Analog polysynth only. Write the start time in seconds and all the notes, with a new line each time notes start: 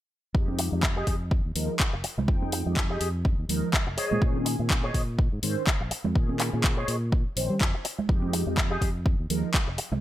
0.34 F3 G#3 D#4 G4
0.72 F3 G#3 D#4 G4
1.55 F3 G#3 D#4 A#4
2.27 F3 G#3 D#4 G5
2.66 F3 G#3 D#4 G4
3.49 F3 G#3 D#4 A#4
4.21 D#3 C#4 G#4
4.59 D#3 C4 C#4 G#4
5.42 D#3 C4 C#4 C5
6.15 D#3 C#4 G#4
6.53 D#3 C4 C#4 G#4
7.36 D#3 C4 C#4 C5
8.09 F3 G#3 D#4 G4
8.46 F3 G#3 D#4 G4
9.29 F3 G#3 D#4 A#4